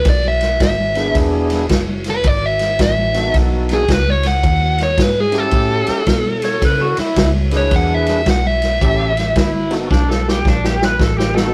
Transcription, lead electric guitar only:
0.09 0.25 D5 loud
0.28 0.61 E5 medium
0.63 1.15 E5 loud
2.10 2.27 B4 medium
2.27 2.46 D5 medium
2.46 2.80 E5 medium
2.82 3.34 E5 loud
3.74 3.92 G#4 medium
3.92 4.10 B4 medium
4.10 4.26 C#5 medium
4.27 4.79 F#5 medium
4.83 5.02 C#5 medium
5.02 5.20 B4 medium
5.20 5.38 G#4 medium
5.38 6.96 A4 loud
7.57 7.73 C#5 loud
7.76 7.94 F#5 medium
7.94 8.28 E5 medium
8.30 8.47 F#5 medium
8.47 9.52 E5 medium

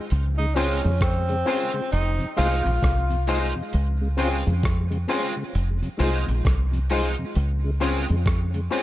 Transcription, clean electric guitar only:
0.56 0.80 G#3 medium
0.56 0.80 C4 loud
0.56 0.80 F4 medium
1.47 1.71 G#3 medium
1.47 1.71 C4 medium
1.47 1.71 F4 medium
1.75 muted clean electric guitar stroke medium
2.38 2.61 G#3 medium
2.38 2.61 D#4 medium
2.38 2.62 F4 medium
2.66 muted clean electric guitar stroke medium
3.28 3.52 G#3 medium
3.28 3.52 D#4 medium
3.28 3.52 F4 medium
4.18 4.42 G#3 medium
4.18 4.42 C4 medium
4.18 4.42 F4 medium
5.09 5.33 G#3 medium
5.09 5.33 C4 medium
5.09 5.33 F4 loud
5.99 6.23 G#3 medium
5.99 6.23 D#4 medium
5.99 6.24 F4 medium
6.28 muted clean electric guitar stroke soft
6.90 7.14 G#3 medium
6.90 7.14 D#4 medium
6.90 7.15 F4 medium
7.81 8.05 G#3 medium
7.81 8.05 C4 medium
7.81 8.05 F4 medium
8.72 8.83 G#3 medium
8.72 8.83 C4 medium
8.72 8.83 F4 medium

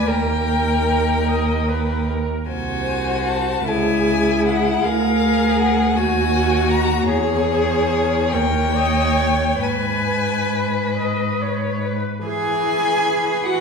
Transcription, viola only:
0.08 1.19 A#4 soft
1.27 1.70 D#5 soft
1.69 2.12 B4 soft
2.10 2.51 A#4 soft
2.52 3.71 C5 soft
3.69 4.87 G#4 medium
4.86 5.97 A#4 medium
5.95 7.10 F#4 medium
7.08 8.32 G#4 medium
8.33 8.77 A#4 medium
8.75 9.19 D#5 medium
9.18 9.64 C#5 soft
9.62 10.89 B4 soft
10.97 11.44 D#5 soft
11.42 11.87 C#5 soft
11.85 12.25 B4 soft
12.25 13.32 E3 medium
13.46 13.60 E3 medium

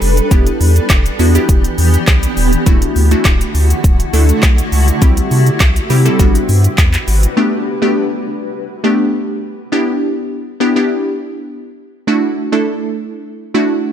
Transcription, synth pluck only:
0.00 0.12 B3 medium
0.00 0.12 D4 medium
0.00 0.12 G4 medium
0.00 0.12 A4 loud
0.31 1.00 B3 medium
0.31 1.00 D4 medium
0.31 1.00 E4 medium
0.31 1.00 G4 medium
1.19 1.31 B3 medium
1.19 1.31 D4 medium
1.19 1.31 E4 medium
1.19 1.32 F#4 loud
1.35 2.26 B3 medium
1.35 2.26 D4 medium
1.35 2.26 E4 medium
1.35 2.26 G4 loud
2.66 3.01 A3 medium
2.66 3.01 D4 medium
2.66 3.01 E4 medium
2.66 3.01 F#4 loud
3.11 3.90 A3 medium
3.11 3.91 D4 medium
3.11 3.91 E4 medium
3.11 3.91 F#4 medium
4.13 4.82 A3 medium
4.13 4.82 D4 medium
4.13 4.82 E4 medium
4.13 4.82 A4 medium
5.01 5.70 G3 medium
5.01 5.71 C4 medium
5.01 5.71 E4 medium
5.01 5.71 G4 loud
5.90 6.02 G3 medium
5.90 6.02 C4 medium
5.90 6.02 E4 medium
5.90 6.02 G4 medium
6.05 6.18 G3 medium
6.05 6.19 C4 medium
6.05 6.19 E4 medium
6.05 6.19 A4 loud
6.19 7.14 G3 loud
6.19 7.14 B3 medium
6.19 7.14 D4 medium
6.19 7.14 F#4 loud
7.37 7.71 A3 medium
7.37 7.71 B3 medium
7.37 7.71 D4 medium
7.37 7.72 G4 loud
7.82 8.61 A3 medium
7.82 8.61 B3 medium
7.82 8.61 D4 medium
7.82 8.61 G4 loud
8.84 9.53 A3 medium
8.84 9.53 B3 medium
8.84 9.53 D4 medium
8.84 9.53 G4 loud
9.72 10.41 B3 medium
9.72 10.41 D4 medium
9.72 10.41 E4 medium
9.72 10.41 G4 loud
10.60 10.72 B3 medium
10.60 10.73 D4 medium
10.60 10.73 E4 medium
10.60 10.73 G4 loud
10.76 11.67 B3 medium
10.76 11.67 D4 medium
10.76 11.67 E4 medium
10.76 11.67 G4 loud
12.07 12.42 A3 medium
12.07 12.42 D4 medium
12.07 12.42 E4 medium
12.07 12.42 F#4 loud
12.52 13.32 A3 medium
12.52 13.32 D4 medium
12.52 13.32 E4 medium
12.52 13.32 A4 loud
13.54 13.93 A3 medium
13.54 13.93 D4 medium
13.54 13.93 E4 medium
13.54 13.93 F#4 loud

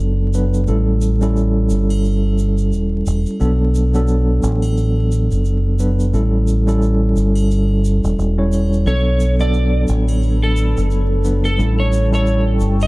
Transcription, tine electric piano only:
0.00 0.30 F#3 medium
0.00 0.30 B3 medium
0.00 0.31 D4 medium
0.00 0.31 A4 loud
0.34 0.65 F#3 medium
0.34 0.65 B3 medium
0.34 0.65 D4 medium
0.34 0.65 B4 medium
0.67 1.17 G3 medium
0.67 1.17 C#4 medium
0.67 1.17 E4 medium
0.67 1.17 A4 medium
1.21 3.37 G3 medium
1.21 3.37 C#4 medium
1.21 3.38 E4 medium
1.21 3.38 A4 medium
3.40 3.89 F#3 medium
3.40 3.90 B3 medium
3.40 3.90 D4 medium
3.40 3.90 A4 loud
3.94 5.76 F#3 medium
3.94 5.76 B3 medium
3.94 5.76 D4 medium
3.94 5.76 A4 medium
5.79 6.10 F#3 medium
5.79 6.10 B3 medium
5.79 6.10 D4 medium
5.79 6.10 B4 medium
6.13 6.63 G3 medium
6.13 6.63 C#4 medium
6.13 6.63 E4 medium
6.13 6.63 A4 medium
6.67 8.34 G3 medium
6.67 8.34 C#4 medium
6.67 8.34 E4 medium
6.67 8.34 A4 loud
8.38 8.83 G3 medium
8.38 8.83 C#4 medium
8.38 8.83 E4 medium
8.38 8.83 C#5 medium
8.86 9.35 F#3 medium
8.86 9.35 B3 medium
8.86 9.36 D4 medium
8.86 9.36 A4 loud
9.40 11.21 F#3 medium
9.40 11.21 B3 medium
9.40 11.22 D4 medium
9.40 11.22 A4 medium
11.24 11.55 F#3 medium
11.24 11.55 B3 medium
11.24 11.55 D4 medium
11.24 11.56 B4 medium
11.57 12.07 G3 medium
11.57 12.08 C#4 medium
11.57 12.08 E4 medium
11.57 12.08 A4 medium
12.11 12.87 G3 medium
12.11 12.87 C#4 medium
12.11 12.87 E4 medium
12.11 12.87 A4 loud

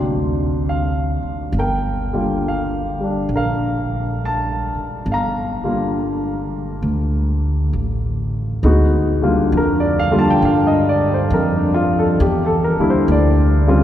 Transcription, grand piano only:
0.00 1.53 C3 soft
0.00 1.53 F#3 soft
0.00 1.54 A#3 soft
0.00 1.55 D4 soft
0.00 0.32 C6 medium
0.69 1.58 F5 medium
1.59 3.28 A#4 soft
1.59 2.41 G5 medium
2.13 5.07 D3 soft
2.13 2.99 G3 soft
2.13 5.07 A#3 soft
2.13 5.08 F4 soft
2.48 3.29 F5 medium
3.00 5.06 G3 soft
3.00 5.08 D4 soft
3.36 5.05 A#4 medium
3.36 4.24 F5 medium
4.25 5.06 A5 medium
5.12 6.82 F5 medium
5.12 6.83 A#5 medium
5.63 8.63 D3 soft
5.63 8.63 G3 soft
5.63 8.64 A#3 soft
5.63 8.64 F4 soft
8.64 9.17 G#3 medium
8.64 9.17 B3 medium
8.64 9.17 D#4 medium
8.64 9.18 F#4 medium
9.22 10.00 D3 medium
9.22 10.00 G3 medium
9.22 10.01 A#3 medium
9.22 10.01 F4 medium
9.57 9.84 A#4 medium
9.80 10.10 D5 medium
9.99 10.06 F5 medium
10.11 10.39 D3 medium
10.11 10.39 G3 medium
10.11 10.39 A#3 medium
10.11 10.39 F4 medium
10.19 10.35 A5 medium
10.30 10.41 G5 medium
10.45 10.72 F5 medium
10.67 10.98 D#5 medium
10.89 11.10 D5 medium
11.14 11.30 C5 medium
11.34 11.61 A#4 medium
11.57 11.87 D4 soft
11.74 11.97 F4 medium
11.99 12.17 A4 medium
12.21 12.49 G4 medium
12.46 12.76 A4 medium
12.64 12.86 A#4 medium
12.79 13.62 D3 medium
12.79 13.62 G3 medium
12.79 13.62 A#3 soft
12.79 13.62 E4 medium
12.90 13.07 C5 medium
13.12 13.84 D5 medium
13.67 13.84 C#3 medium
13.67 13.84 G3 medium
13.67 13.84 C4 medium
13.67 13.84 F4 medium

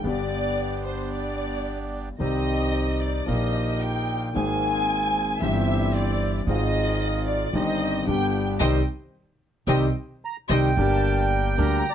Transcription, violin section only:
0.06 0.81 D5 medium
0.86 1.10 C5 medium
1.14 1.94 D5 medium
2.20 2.97 D#5 medium
3.00 3.27 D5 medium
3.26 3.81 D#5 medium
3.81 4.22 G5 loud
4.35 5.38 G#5 loud
5.42 5.95 E5 loud
5.95 6.34 D5 loud
6.48 7.23 D#5 loud
7.27 7.54 D5 medium
7.56 8.08 D#5 loud
8.08 8.45 G5 loud
8.60 8.77 C5 loud
8.60 8.77 D#5 loud
8.60 8.77 G5 loud
9.68 9.85 C5 medium
9.68 9.85 D#5 medium
9.68 9.85 G5 medium
10.49 10.67 C5 medium
10.49 10.67 D#5 medium
10.49 10.67 G5 medium
10.77 11.27 A5 medium
11.31 11.56 G5 medium
11.58 11.95 A#5 loud

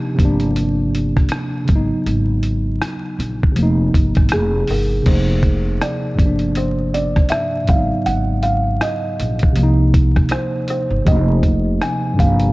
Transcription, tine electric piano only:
0.00 0.13 C3 medium
0.00 0.16 F3 medium
0.00 0.20 A#3 medium
0.00 0.21 D4 medium
0.00 0.21 D#4 medium
0.00 0.20 G4 medium
0.14 1.63 C3 medium
0.14 1.65 F3 medium
0.21 1.67 A#3 medium
0.21 1.69 D4 medium
1.65 3.51 C#3 medium
1.65 3.52 F#3 medium
1.72 1.78 A#3 soft
1.72 3.56 D#4 medium
1.78 3.57 B3 medium
3.52 5.01 C3 medium
3.52 5.03 F3 medium
3.59 5.04 A#3 medium
3.59 5.06 D#4 medium
5.03 6.16 C3 medium
5.03 6.18 F3 medium
5.03 6.19 A#3 medium
5.09 6.20 D#4 medium
6.15 7.64 G2 medium
6.15 7.65 C3 medium
6.20 7.66 F3 medium
6.20 7.68 A#3 medium
6.26 7.69 D4 medium
7.65 9.50 G#2 medium
7.65 9.52 C#3 medium
7.70 9.53 F#3 medium
7.70 9.55 B3 medium
7.75 9.56 D#4 medium
9.53 11.01 C3 medium
9.53 11.03 F3 medium
9.59 11.05 A#3 medium
9.59 11.07 D#4 medium
11.05 12.16 C3 medium
11.05 12.18 F3 medium
11.05 12.20 A#3 medium
11.10 11.16 D4 medium
11.17 12.24 D#4 medium
12.14 12.53 G2 medium
12.14 12.53 C3 medium
12.19 12.53 F3 medium
12.19 12.53 A#3 medium
12.25 12.53 D4 medium

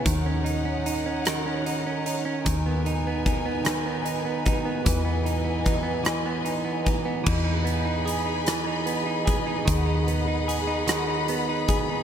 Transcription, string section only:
0.00 2.42 C#5 medium
0.00 2.43 F#5 medium
0.04 2.43 D#4 medium
0.04 4.82 A#4 medium
2.46 4.84 D#4 medium
2.46 7.23 B4 medium
2.46 4.84 G#5 medium
4.87 7.25 E3 medium
4.87 7.25 D#5 medium
4.87 7.25 G#5 medium
7.27 12.03 G#4 medium
7.27 12.03 D#5 medium
7.27 9.66 G#5 medium
7.27 9.65 B5 medium
9.66 12.03 F#5 medium
9.66 12.03 B5 medium

